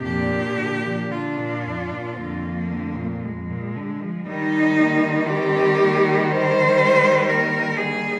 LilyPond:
<<
  \new Staff \with { instrumentName = "Cello" } { \time 4/4 \key ees \major \tempo 4 = 57 d'4 d'4 bes4 aes4 | ees'4 g'4 c''4 bes'8 aes'8 | }
  \new Staff \with { instrumentName = "Cello" } { \time 4/4 \key ees \major g'4 f'2 r4 | g8 bes8 c'8 bes8 g8 aes8 bes4 | }
  \new Staff \with { instrumentName = "Cello" } { \clef bass \time 4/4 \key ees \major f,16 bes,16 d16 f16 d16 bes,16 f,16 bes,16 d16 f16 d16 bes,16 f,16 bes,16 d16 f16 | g1 | }
  \new Staff \with { instrumentName = "Cello" } { \clef bass \time 4/4 \key ees \major bes,4 r4 f,4 r4 | ees1 | }
>>